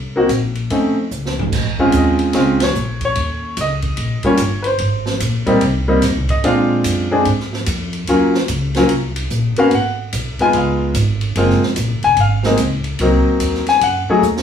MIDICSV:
0, 0, Header, 1, 5, 480
1, 0, Start_track
1, 0, Key_signature, -5, "minor"
1, 0, Tempo, 409836
1, 1787, Time_signature, 4, 2, 24, 8
1, 16893, End_track
2, 0, Start_track
2, 0, Title_t, "Grand piano"
2, 0, Program_c, 0, 0
2, 185, Note_on_c, 0, 58, 64
2, 193, Note_on_c, 0, 60, 58
2, 194, Note_on_c, 0, 63, 59
2, 199, Note_on_c, 0, 66, 74
2, 334, Note_off_c, 0, 58, 0
2, 338, Note_off_c, 0, 60, 0
2, 339, Note_off_c, 0, 63, 0
2, 342, Note_off_c, 0, 66, 0
2, 830, Note_on_c, 0, 57, 54
2, 836, Note_on_c, 0, 60, 47
2, 836, Note_on_c, 0, 61, 48
2, 842, Note_on_c, 0, 63, 61
2, 1107, Note_off_c, 0, 57, 0
2, 1110, Note_off_c, 0, 60, 0
2, 1110, Note_off_c, 0, 61, 0
2, 1113, Note_off_c, 0, 63, 0
2, 2101, Note_on_c, 0, 56, 66
2, 2105, Note_on_c, 0, 60, 59
2, 2108, Note_on_c, 0, 65, 77
2, 2110, Note_on_c, 0, 61, 64
2, 2311, Note_on_c, 0, 75, 68
2, 2716, Note_off_c, 0, 56, 0
2, 2717, Note_off_c, 0, 60, 0
2, 2719, Note_off_c, 0, 65, 0
2, 2720, Note_off_c, 0, 61, 0
2, 2742, Note_on_c, 0, 56, 65
2, 2748, Note_on_c, 0, 60, 61
2, 2748, Note_on_c, 0, 61, 64
2, 2758, Note_on_c, 0, 65, 74
2, 3023, Note_off_c, 0, 56, 0
2, 3026, Note_off_c, 0, 60, 0
2, 3026, Note_off_c, 0, 61, 0
2, 3031, Note_off_c, 0, 65, 0
2, 3032, Note_off_c, 0, 75, 0
2, 3086, Note_on_c, 0, 73, 72
2, 3519, Note_off_c, 0, 73, 0
2, 3571, Note_on_c, 0, 73, 85
2, 4160, Note_off_c, 0, 73, 0
2, 4226, Note_on_c, 0, 75, 83
2, 4949, Note_off_c, 0, 75, 0
2, 4971, Note_on_c, 0, 55, 59
2, 4974, Note_on_c, 0, 58, 53
2, 4979, Note_on_c, 0, 61, 56
2, 4981, Note_on_c, 0, 65, 66
2, 4992, Note_on_c, 0, 73, 80
2, 5128, Note_off_c, 0, 55, 0
2, 5129, Note_off_c, 0, 58, 0
2, 5131, Note_off_c, 0, 61, 0
2, 5133, Note_off_c, 0, 65, 0
2, 5416, Note_on_c, 0, 71, 57
2, 5431, Note_off_c, 0, 73, 0
2, 5441, Note_off_c, 0, 71, 0
2, 5462, Note_on_c, 0, 72, 77
2, 6065, Note_off_c, 0, 72, 0
2, 6399, Note_on_c, 0, 55, 78
2, 6408, Note_on_c, 0, 58, 66
2, 6410, Note_on_c, 0, 60, 68
2, 6412, Note_on_c, 0, 63, 85
2, 6562, Note_off_c, 0, 55, 0
2, 6566, Note_off_c, 0, 58, 0
2, 6567, Note_off_c, 0, 60, 0
2, 6568, Note_off_c, 0, 63, 0
2, 6886, Note_on_c, 0, 55, 70
2, 6887, Note_on_c, 0, 58, 64
2, 6893, Note_on_c, 0, 60, 65
2, 6895, Note_on_c, 0, 63, 80
2, 7045, Note_off_c, 0, 55, 0
2, 7046, Note_off_c, 0, 58, 0
2, 7049, Note_off_c, 0, 60, 0
2, 7049, Note_off_c, 0, 63, 0
2, 7382, Note_on_c, 0, 75, 79
2, 7540, Note_on_c, 0, 56, 66
2, 7544, Note_on_c, 0, 60, 61
2, 7545, Note_off_c, 0, 75, 0
2, 7549, Note_on_c, 0, 62, 63
2, 7552, Note_on_c, 0, 65, 79
2, 7577, Note_on_c, 0, 77, 69
2, 7862, Note_off_c, 0, 77, 0
2, 8271, Note_off_c, 0, 56, 0
2, 8273, Note_off_c, 0, 60, 0
2, 8275, Note_off_c, 0, 62, 0
2, 8277, Note_off_c, 0, 65, 0
2, 8332, Note_on_c, 0, 56, 64
2, 8332, Note_on_c, 0, 60, 60
2, 8339, Note_on_c, 0, 62, 60
2, 8342, Note_on_c, 0, 68, 71
2, 8488, Note_off_c, 0, 56, 0
2, 8488, Note_off_c, 0, 60, 0
2, 8492, Note_off_c, 0, 62, 0
2, 8493, Note_off_c, 0, 68, 0
2, 9470, Note_on_c, 0, 54, 63
2, 9474, Note_on_c, 0, 58, 57
2, 9478, Note_on_c, 0, 61, 58
2, 9478, Note_on_c, 0, 65, 69
2, 9747, Note_off_c, 0, 54, 0
2, 9749, Note_off_c, 0, 58, 0
2, 9751, Note_off_c, 0, 61, 0
2, 9751, Note_off_c, 0, 65, 0
2, 10263, Note_on_c, 0, 54, 69
2, 10265, Note_on_c, 0, 58, 60
2, 10270, Note_on_c, 0, 61, 61
2, 10274, Note_on_c, 0, 65, 78
2, 10414, Note_off_c, 0, 54, 0
2, 10415, Note_off_c, 0, 58, 0
2, 10417, Note_off_c, 0, 61, 0
2, 10419, Note_off_c, 0, 65, 0
2, 11218, Note_on_c, 0, 58, 76
2, 11222, Note_on_c, 0, 59, 68
2, 11229, Note_on_c, 0, 61, 68
2, 11229, Note_on_c, 0, 66, 78
2, 11236, Note_on_c, 0, 77, 94
2, 11372, Note_off_c, 0, 58, 0
2, 11373, Note_off_c, 0, 59, 0
2, 11377, Note_off_c, 0, 61, 0
2, 11377, Note_off_c, 0, 66, 0
2, 11393, Note_off_c, 0, 77, 0
2, 11417, Note_on_c, 0, 78, 79
2, 11593, Note_off_c, 0, 78, 0
2, 12185, Note_on_c, 0, 56, 72
2, 12190, Note_on_c, 0, 59, 62
2, 12191, Note_on_c, 0, 63, 65
2, 12198, Note_on_c, 0, 65, 75
2, 12201, Note_on_c, 0, 80, 85
2, 12356, Note_off_c, 0, 80, 0
2, 12389, Note_on_c, 0, 77, 62
2, 12669, Note_off_c, 0, 77, 0
2, 12798, Note_off_c, 0, 56, 0
2, 12801, Note_off_c, 0, 59, 0
2, 12801, Note_off_c, 0, 63, 0
2, 12805, Note_off_c, 0, 65, 0
2, 13316, Note_on_c, 0, 56, 68
2, 13321, Note_on_c, 0, 58, 60
2, 13321, Note_on_c, 0, 60, 56
2, 13330, Note_on_c, 0, 65, 71
2, 13591, Note_off_c, 0, 56, 0
2, 13593, Note_off_c, 0, 58, 0
2, 13593, Note_off_c, 0, 60, 0
2, 13597, Note_off_c, 0, 65, 0
2, 14104, Note_on_c, 0, 80, 95
2, 14267, Note_off_c, 0, 80, 0
2, 14294, Note_on_c, 0, 77, 67
2, 14581, Note_on_c, 0, 56, 65
2, 14582, Note_off_c, 0, 77, 0
2, 14588, Note_on_c, 0, 58, 61
2, 14588, Note_on_c, 0, 60, 60
2, 14595, Note_on_c, 0, 63, 75
2, 14734, Note_off_c, 0, 56, 0
2, 14737, Note_off_c, 0, 58, 0
2, 14737, Note_off_c, 0, 60, 0
2, 14740, Note_off_c, 0, 63, 0
2, 15233, Note_on_c, 0, 54, 65
2, 15241, Note_on_c, 0, 58, 62
2, 15244, Note_on_c, 0, 60, 58
2, 15245, Note_on_c, 0, 63, 70
2, 15959, Note_off_c, 0, 54, 0
2, 15963, Note_off_c, 0, 58, 0
2, 15964, Note_off_c, 0, 60, 0
2, 15965, Note_off_c, 0, 63, 0
2, 16031, Note_on_c, 0, 80, 89
2, 16191, Note_off_c, 0, 80, 0
2, 16200, Note_on_c, 0, 78, 75
2, 16383, Note_off_c, 0, 78, 0
2, 16508, Note_on_c, 0, 54, 70
2, 16513, Note_on_c, 0, 57, 65
2, 16519, Note_on_c, 0, 63, 63
2, 16519, Note_on_c, 0, 68, 79
2, 16658, Note_off_c, 0, 54, 0
2, 16660, Note_off_c, 0, 57, 0
2, 16663, Note_off_c, 0, 63, 0
2, 16663, Note_off_c, 0, 68, 0
2, 16893, End_track
3, 0, Start_track
3, 0, Title_t, "Upright bass"
3, 0, Program_c, 1, 32
3, 0, Note_on_c, 1, 36, 75
3, 328, Note_off_c, 1, 36, 0
3, 333, Note_on_c, 1, 34, 80
3, 806, Note_off_c, 1, 34, 0
3, 822, Note_on_c, 1, 41, 70
3, 1290, Note_off_c, 1, 41, 0
3, 1303, Note_on_c, 1, 37, 78
3, 1771, Note_off_c, 1, 37, 0
3, 1784, Note_on_c, 1, 34, 78
3, 2251, Note_off_c, 1, 34, 0
3, 2263, Note_on_c, 1, 39, 81
3, 2731, Note_off_c, 1, 39, 0
3, 2747, Note_on_c, 1, 37, 79
3, 3213, Note_off_c, 1, 37, 0
3, 3222, Note_on_c, 1, 34, 87
3, 3690, Note_off_c, 1, 34, 0
3, 3699, Note_on_c, 1, 39, 79
3, 4169, Note_off_c, 1, 39, 0
3, 4183, Note_on_c, 1, 37, 84
3, 4651, Note_off_c, 1, 37, 0
3, 4657, Note_on_c, 1, 34, 81
3, 4949, Note_off_c, 1, 34, 0
3, 5132, Note_on_c, 1, 31, 91
3, 5605, Note_off_c, 1, 31, 0
3, 5619, Note_on_c, 1, 32, 83
3, 6089, Note_off_c, 1, 32, 0
3, 6094, Note_on_c, 1, 34, 88
3, 6566, Note_off_c, 1, 34, 0
3, 6581, Note_on_c, 1, 36, 85
3, 7049, Note_off_c, 1, 36, 0
3, 7057, Note_on_c, 1, 39, 91
3, 7216, Note_off_c, 1, 39, 0
3, 7216, Note_on_c, 1, 36, 56
3, 7382, Note_off_c, 1, 36, 0
3, 7387, Note_on_c, 1, 32, 67
3, 7532, Note_off_c, 1, 32, 0
3, 7539, Note_on_c, 1, 46, 83
3, 8009, Note_off_c, 1, 46, 0
3, 8020, Note_on_c, 1, 42, 82
3, 8489, Note_off_c, 1, 42, 0
3, 8500, Note_on_c, 1, 44, 77
3, 8969, Note_off_c, 1, 44, 0
3, 8981, Note_on_c, 1, 41, 91
3, 9450, Note_off_c, 1, 41, 0
3, 9460, Note_on_c, 1, 39, 77
3, 9929, Note_off_c, 1, 39, 0
3, 9945, Note_on_c, 1, 37, 89
3, 10406, Note_off_c, 1, 37, 0
3, 10413, Note_on_c, 1, 36, 83
3, 10886, Note_off_c, 1, 36, 0
3, 10902, Note_on_c, 1, 34, 89
3, 11192, Note_off_c, 1, 34, 0
3, 11378, Note_on_c, 1, 32, 79
3, 11848, Note_off_c, 1, 32, 0
3, 11865, Note_on_c, 1, 35, 89
3, 12154, Note_off_c, 1, 35, 0
3, 12342, Note_on_c, 1, 37, 83
3, 12811, Note_off_c, 1, 37, 0
3, 12816, Note_on_c, 1, 32, 92
3, 13288, Note_off_c, 1, 32, 0
3, 13301, Note_on_c, 1, 30, 86
3, 13592, Note_off_c, 1, 30, 0
3, 13778, Note_on_c, 1, 34, 98
3, 13944, Note_on_c, 1, 30, 60
3, 13962, Note_off_c, 1, 34, 0
3, 14090, Note_off_c, 1, 30, 0
3, 14097, Note_on_c, 1, 29, 68
3, 14244, Note_off_c, 1, 29, 0
3, 14251, Note_on_c, 1, 32, 83
3, 14725, Note_off_c, 1, 32, 0
3, 14736, Note_on_c, 1, 37, 89
3, 15208, Note_off_c, 1, 37, 0
3, 15221, Note_on_c, 1, 36, 87
3, 15512, Note_off_c, 1, 36, 0
3, 15700, Note_on_c, 1, 39, 84
3, 16171, Note_off_c, 1, 39, 0
3, 16178, Note_on_c, 1, 42, 79
3, 16472, Note_off_c, 1, 42, 0
3, 16661, Note_on_c, 1, 39, 86
3, 16893, Note_off_c, 1, 39, 0
3, 16893, End_track
4, 0, Start_track
4, 0, Title_t, "Muted upright bass strokes"
4, 4960, Note_on_c, 9, 29, 38
4, 5077, Note_off_c, 9, 29, 0
4, 11212, Note_on_c, 9, 29, 41
4, 11329, Note_off_c, 9, 29, 0
4, 12170, Note_on_c, 9, 29, 41
4, 12287, Note_off_c, 9, 29, 0
4, 13606, Note_on_c, 9, 29, 41
4, 13723, Note_off_c, 9, 29, 0
4, 15536, Note_on_c, 9, 29, 41
4, 15653, Note_off_c, 9, 29, 0
4, 16495, Note_on_c, 9, 29, 38
4, 16612, Note_off_c, 9, 29, 0
4, 16893, End_track
5, 0, Start_track
5, 0, Title_t, "Drums"
5, 341, Note_on_c, 9, 44, 50
5, 341, Note_on_c, 9, 51, 60
5, 458, Note_off_c, 9, 44, 0
5, 458, Note_off_c, 9, 51, 0
5, 648, Note_on_c, 9, 51, 42
5, 766, Note_off_c, 9, 51, 0
5, 823, Note_on_c, 9, 51, 59
5, 940, Note_off_c, 9, 51, 0
5, 1302, Note_on_c, 9, 44, 54
5, 1419, Note_off_c, 9, 44, 0
5, 1470, Note_on_c, 9, 38, 52
5, 1587, Note_off_c, 9, 38, 0
5, 1628, Note_on_c, 9, 43, 72
5, 1745, Note_off_c, 9, 43, 0
5, 1784, Note_on_c, 9, 36, 70
5, 1787, Note_on_c, 9, 38, 39
5, 1787, Note_on_c, 9, 49, 74
5, 1901, Note_off_c, 9, 36, 0
5, 1904, Note_off_c, 9, 38, 0
5, 1904, Note_off_c, 9, 49, 0
5, 2093, Note_on_c, 9, 36, 54
5, 2210, Note_off_c, 9, 36, 0
5, 2251, Note_on_c, 9, 44, 52
5, 2251, Note_on_c, 9, 51, 67
5, 2368, Note_off_c, 9, 44, 0
5, 2368, Note_off_c, 9, 51, 0
5, 2563, Note_on_c, 9, 51, 45
5, 2680, Note_off_c, 9, 51, 0
5, 2731, Note_on_c, 9, 51, 64
5, 2737, Note_on_c, 9, 38, 36
5, 2848, Note_off_c, 9, 51, 0
5, 2854, Note_off_c, 9, 38, 0
5, 3047, Note_on_c, 9, 51, 69
5, 3052, Note_on_c, 9, 38, 84
5, 3164, Note_off_c, 9, 51, 0
5, 3170, Note_off_c, 9, 38, 0
5, 3219, Note_on_c, 9, 44, 51
5, 3337, Note_off_c, 9, 44, 0
5, 3522, Note_on_c, 9, 51, 45
5, 3530, Note_on_c, 9, 36, 53
5, 3640, Note_off_c, 9, 51, 0
5, 3647, Note_off_c, 9, 36, 0
5, 3694, Note_on_c, 9, 51, 61
5, 3811, Note_off_c, 9, 51, 0
5, 4178, Note_on_c, 9, 44, 59
5, 4178, Note_on_c, 9, 51, 64
5, 4295, Note_off_c, 9, 44, 0
5, 4295, Note_off_c, 9, 51, 0
5, 4477, Note_on_c, 9, 51, 42
5, 4486, Note_on_c, 9, 36, 53
5, 4595, Note_off_c, 9, 51, 0
5, 4603, Note_off_c, 9, 36, 0
5, 4648, Note_on_c, 9, 51, 59
5, 4765, Note_off_c, 9, 51, 0
5, 4952, Note_on_c, 9, 51, 48
5, 4963, Note_on_c, 9, 36, 52
5, 5069, Note_off_c, 9, 51, 0
5, 5080, Note_off_c, 9, 36, 0
5, 5122, Note_on_c, 9, 44, 65
5, 5122, Note_on_c, 9, 51, 67
5, 5240, Note_off_c, 9, 44, 0
5, 5240, Note_off_c, 9, 51, 0
5, 5434, Note_on_c, 9, 51, 49
5, 5551, Note_off_c, 9, 51, 0
5, 5604, Note_on_c, 9, 51, 56
5, 5721, Note_off_c, 9, 51, 0
5, 5923, Note_on_c, 9, 38, 62
5, 6040, Note_off_c, 9, 38, 0
5, 6094, Note_on_c, 9, 44, 59
5, 6094, Note_on_c, 9, 51, 75
5, 6211, Note_off_c, 9, 44, 0
5, 6211, Note_off_c, 9, 51, 0
5, 6401, Note_on_c, 9, 51, 43
5, 6404, Note_on_c, 9, 36, 47
5, 6519, Note_off_c, 9, 51, 0
5, 6521, Note_off_c, 9, 36, 0
5, 6570, Note_on_c, 9, 51, 62
5, 6687, Note_off_c, 9, 51, 0
5, 7049, Note_on_c, 9, 44, 57
5, 7049, Note_on_c, 9, 51, 64
5, 7054, Note_on_c, 9, 38, 37
5, 7166, Note_off_c, 9, 44, 0
5, 7166, Note_off_c, 9, 51, 0
5, 7172, Note_off_c, 9, 38, 0
5, 7365, Note_on_c, 9, 36, 57
5, 7365, Note_on_c, 9, 51, 48
5, 7482, Note_off_c, 9, 36, 0
5, 7483, Note_off_c, 9, 51, 0
5, 7540, Note_on_c, 9, 51, 59
5, 7657, Note_off_c, 9, 51, 0
5, 8013, Note_on_c, 9, 44, 65
5, 8013, Note_on_c, 9, 51, 76
5, 8130, Note_off_c, 9, 44, 0
5, 8130, Note_off_c, 9, 51, 0
5, 8494, Note_on_c, 9, 51, 61
5, 8611, Note_off_c, 9, 51, 0
5, 8665, Note_on_c, 9, 38, 29
5, 8782, Note_off_c, 9, 38, 0
5, 8820, Note_on_c, 9, 38, 46
5, 8937, Note_off_c, 9, 38, 0
5, 8975, Note_on_c, 9, 44, 54
5, 8975, Note_on_c, 9, 51, 77
5, 9092, Note_off_c, 9, 44, 0
5, 9092, Note_off_c, 9, 51, 0
5, 9286, Note_on_c, 9, 51, 46
5, 9403, Note_off_c, 9, 51, 0
5, 9455, Note_on_c, 9, 51, 62
5, 9572, Note_off_c, 9, 51, 0
5, 9771, Note_on_c, 9, 38, 60
5, 9888, Note_off_c, 9, 38, 0
5, 9933, Note_on_c, 9, 44, 62
5, 9933, Note_on_c, 9, 51, 70
5, 10050, Note_off_c, 9, 44, 0
5, 10050, Note_off_c, 9, 51, 0
5, 10242, Note_on_c, 9, 51, 43
5, 10248, Note_on_c, 9, 38, 58
5, 10359, Note_off_c, 9, 51, 0
5, 10365, Note_off_c, 9, 38, 0
5, 10409, Note_on_c, 9, 51, 65
5, 10526, Note_off_c, 9, 51, 0
5, 10727, Note_on_c, 9, 51, 69
5, 10844, Note_off_c, 9, 51, 0
5, 10892, Note_on_c, 9, 44, 50
5, 11010, Note_off_c, 9, 44, 0
5, 11200, Note_on_c, 9, 51, 48
5, 11317, Note_off_c, 9, 51, 0
5, 11372, Note_on_c, 9, 51, 59
5, 11489, Note_off_c, 9, 51, 0
5, 11859, Note_on_c, 9, 44, 56
5, 11859, Note_on_c, 9, 51, 74
5, 11976, Note_off_c, 9, 44, 0
5, 11976, Note_off_c, 9, 51, 0
5, 12171, Note_on_c, 9, 51, 43
5, 12288, Note_off_c, 9, 51, 0
5, 12334, Note_on_c, 9, 51, 56
5, 12452, Note_off_c, 9, 51, 0
5, 12819, Note_on_c, 9, 44, 65
5, 12819, Note_on_c, 9, 51, 68
5, 12936, Note_off_c, 9, 44, 0
5, 12936, Note_off_c, 9, 51, 0
5, 13129, Note_on_c, 9, 51, 51
5, 13246, Note_off_c, 9, 51, 0
5, 13299, Note_on_c, 9, 51, 66
5, 13416, Note_off_c, 9, 51, 0
5, 13465, Note_on_c, 9, 38, 28
5, 13582, Note_off_c, 9, 38, 0
5, 13619, Note_on_c, 9, 38, 48
5, 13736, Note_off_c, 9, 38, 0
5, 13772, Note_on_c, 9, 44, 63
5, 13772, Note_on_c, 9, 51, 67
5, 13889, Note_off_c, 9, 44, 0
5, 13889, Note_off_c, 9, 51, 0
5, 14084, Note_on_c, 9, 51, 46
5, 14202, Note_off_c, 9, 51, 0
5, 14249, Note_on_c, 9, 51, 58
5, 14366, Note_off_c, 9, 51, 0
5, 14560, Note_on_c, 9, 38, 62
5, 14678, Note_off_c, 9, 38, 0
5, 14727, Note_on_c, 9, 44, 60
5, 14727, Note_on_c, 9, 51, 66
5, 14844, Note_off_c, 9, 44, 0
5, 14844, Note_off_c, 9, 51, 0
5, 15039, Note_on_c, 9, 51, 46
5, 15156, Note_off_c, 9, 51, 0
5, 15211, Note_on_c, 9, 51, 60
5, 15328, Note_off_c, 9, 51, 0
5, 15693, Note_on_c, 9, 44, 62
5, 15693, Note_on_c, 9, 51, 72
5, 15810, Note_off_c, 9, 44, 0
5, 15810, Note_off_c, 9, 51, 0
5, 15863, Note_on_c, 9, 38, 29
5, 15980, Note_off_c, 9, 38, 0
5, 16004, Note_on_c, 9, 51, 44
5, 16021, Note_on_c, 9, 38, 44
5, 16122, Note_off_c, 9, 51, 0
5, 16138, Note_off_c, 9, 38, 0
5, 16178, Note_on_c, 9, 51, 66
5, 16295, Note_off_c, 9, 51, 0
5, 16662, Note_on_c, 9, 44, 55
5, 16779, Note_off_c, 9, 44, 0
5, 16825, Note_on_c, 9, 38, 61
5, 16893, Note_off_c, 9, 38, 0
5, 16893, End_track
0, 0, End_of_file